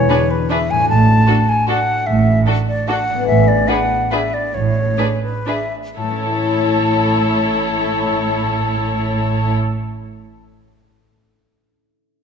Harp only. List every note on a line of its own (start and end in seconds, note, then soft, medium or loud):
0.00 0.81 E3 soft
0.00 0.84 B3 soft
0.00 0.79 D4 soft
0.00 0.88 G#4 soft
0.71 3.09 A2 soft
0.75 3.23 A3 soft
0.80 3.18 D4 soft
0.84 3.27 F#4 soft
3.10 5.89 A2 soft
3.14 5.91 B3 soft
3.19 5.94 D4 soft
3.23 5.96 G#4 soft
5.97 10.24 A2 soft
6.04 10.28 A3 soft
6.11 10.31 C#4 soft
6.18 10.35 E4 soft
6.25 10.38 A4 soft
6.32 10.42 E5 soft